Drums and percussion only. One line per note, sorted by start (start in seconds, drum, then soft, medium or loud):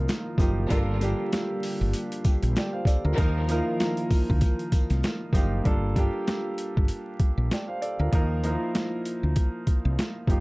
0.08 snare loud
0.08 closed hi-hat medium
0.08 sleigh bells medium
0.38 kick loud
0.38 closed hi-hat medium
0.38 sleigh bells medium
0.70 kick loud
0.70 closed hi-hat medium
0.70 sleigh bells soft
1.01 closed hi-hat medium
1.01 sleigh bells medium
1.32 snare loud
1.32 snare medium
1.32 closed hi-hat medium
1.32 sleigh bells medium
1.63 open hi-hat medium
1.63 sleigh bells medium
1.93 closed hi-hat loud
1.93 sleigh bells medium
2.12 closed hi-hat medium
2.24 kick medium
2.24 closed hi-hat medium
2.24 sleigh bells medium
2.43 closed hi-hat medium
2.56 snare loud
2.56 closed hi-hat medium
2.56 sleigh bells medium
2.85 kick medium
2.85 closed hi-hat medium
2.85 sleigh bells medium
3.18 kick loud
3.18 closed hi-hat medium
3.18 sleigh bells soft
3.49 closed hi-hat medium
3.49 sleigh bells medium
3.80 snare loud
3.80 snare medium
3.80 closed hi-hat medium
3.80 sleigh bells medium
3.97 closed hi-hat medium
4.11 kick loud
4.11 open hi-hat medium
4.11 sleigh bells medium
4.30 kick medium
4.41 kick loud
4.41 closed hi-hat loud
4.41 sleigh bells medium
4.59 closed hi-hat medium
4.72 kick medium
4.72 closed hi-hat medium
4.72 sleigh bells medium
4.90 snare soft
4.90 closed hi-hat medium
5.03 snare loud
5.03 closed hi-hat medium
5.03 sleigh bells medium
5.33 kick medium
5.33 closed hi-hat medium
5.33 sleigh bells medium
5.65 kick loud
5.65 closed hi-hat medium
5.96 kick medium
5.96 closed hi-hat medium
6.27 snare loud
6.27 snare medium
6.27 closed hi-hat medium
6.58 closed hi-hat medium
6.77 kick medium
6.88 closed hi-hat loud
7.20 kick medium
7.20 closed hi-hat medium
7.51 snare loud
7.51 snare medium
7.51 closed hi-hat medium
7.82 closed hi-hat medium
8.13 kick loud
8.13 closed hi-hat medium
8.44 closed hi-hat medium
8.75 snare loud
8.75 snare medium
8.75 closed hi-hat medium
9.05 closed hi-hat medium
9.36 kick loud
9.36 closed hi-hat loud
9.67 kick medium
9.67 closed hi-hat medium
9.99 snare loud
9.99 closed hi-hat medium
10.27 kick medium
10.27 closed hi-hat medium